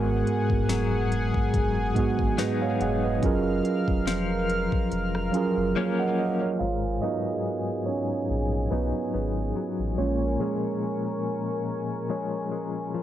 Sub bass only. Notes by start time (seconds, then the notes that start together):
Already playing: G#1
0.50 F1
1.54 F#1
2.19 G#1
2.81 F1
3.23 F#1
3.88 F1
4.92 F1
5.57 F#1
6.61 G#1
8.30 A#1
8.72 B1
9.14 G#1
9.79 A1
9.98 A#1